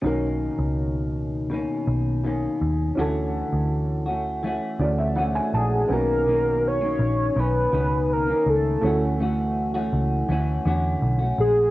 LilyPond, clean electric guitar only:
\new Staff \with { instrumentName = "Clean electric guitar" } { \time 4/4 \key b \major \tempo 4 = 82 <b, dis ais cis'>2 <b, dis ais cis'>4 <b, dis ais cis'>4 | <d e a cis' fis'>4. <a cis' fis'>8 <e a cis' fis'>4 <e a cis' fis'>4 | <b, dis ais cis'>8 <b, dis ais cis'>8. <dis ais cis'>8. <b, dis cis'>8 <b, dis cis'>8. <dis ais cis'>8. | <e a cis' fis'>8 <e a cis' fis'>8. <e a cis' fis'>8. <e a cis' fis'>8 <d e a cis' fis'>8. <a cis' fis'>8. | }